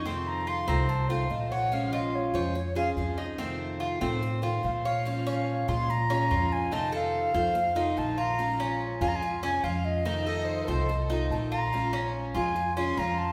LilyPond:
<<
  \new Staff \with { instrumentName = "Flute" } { \time 4/4 \key bes \minor \tempo 4 = 144 c'''8 bes''8 c'''8 bes''8 a''8 c''8 ees''8 ges''8 | f''8 ees''8 des''8 c''8 des''8 f''8 r4 | r2. f''8 f''8~ | f''4. c'''8 bes''4. aes''8 |
a''8 f''2~ f''8 a''8 bes''8~ | bes''4 \tuplet 3/2 { r8. aes''16 bes''16 aes''16~ } aes''8 aes''8 f''8 ees''8~ | ees''2~ ees''8 r8 a''8 bes''8~ | bes''4 r8 aes''4 c'''8 bes''8 a''8 | }
  \new Staff \with { instrumentName = "Violin section" } { \time 4/4 \key bes \minor r1 | r1 | r1 | r1 |
r1 | r1 | r8 ees''8 c''8 a'4~ a'16 r4 r16 | r1 | }
  \new Staff \with { instrumentName = "Cuban tres" } { \time 4/4 \key bes \minor c'4 f'8 c'4 f'4 des''8~ | des''8 f'4 des''4 aes'4 ees'8 | c'4 f'8 c'4 f'4 des''8 | r8 des'4 f'4 des'8 f'4 |
ees'8 a'4 c''4 ees'4 f'8~ | f'8 des'4 f'4 des'8 f'4 | ees'8 a'4 c''4 ees'4 f'8~ | f'8 des'4 f'4 des'8 f'4 | }
  \new Staff \with { instrumentName = "Steel-string acoustic guitar" } { \time 4/4 \key bes \minor <c ees a c' f'>4. <ees a c' f'>8 r8 <ees a c' f'>8 <ees a c' f'>4 | <f aes des' f'>4. <aes des' f'>8 r8 <aes des' f'>8 <f aes des' f'>4 | <c ees a c' f'>4. <ees a c' f'>8 r8 <ees a c' f'>8 <ees a c' f'>4 | <f aes des' f'>4. <aes des' f'>8 r8 <aes des' f'>8 <f aes des' f'>4 |
<c ees a c' f'>4. <ees a c' f'>8 r8 <ees a c' f'>8 <ees a c' f'>4 | <f aes des' f'>4. <aes des' f'>8 r8 <aes des' f'>8 <f aes des' f'>4 | <c ees a c' f'>4. <ees a c' f'>8 r8 <ees a c' f'>8 <ees a c' f'>4 | <f aes des' f'>4. <aes des' f'>8 r8 <aes des' f'>8 <f aes des' f'>4 | }
  \new Staff \with { instrumentName = "Upright bass" } { \clef bass \time 4/4 \key bes \minor f,4. c,4. bes,,4~ | bes,,4. f,4. f,4~ | f,4. a,4. bes,4~ | bes,4. bes,4. f,4~ |
f,4. f,4. bes,,4~ | bes,,4. f,4. f,4~ | f,4. c,4. bes,,4~ | bes,,4. f,4. f,4 | }
>>